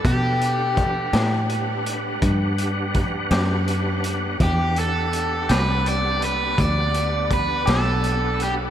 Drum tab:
HH |xxxxxxxxxxxx|xxxxxxxxxxxx|
SD |---o-----o--|---o-----o--|
BD |o-o---o-o---|o-----o-o---|